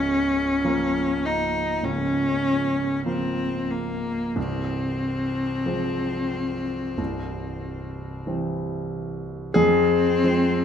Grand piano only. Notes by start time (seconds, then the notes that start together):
Already playing: C#1 C#2
0.65 F3 A#3
1.83 C#1 C#2
3.06 F3 A#3
4.36 C1 C2
5.66 F3 G#3 C4
6.98 C1 C2
8.27 E3 G3 C4
9.54 F2 G#4
10.24 F3 G#3 C4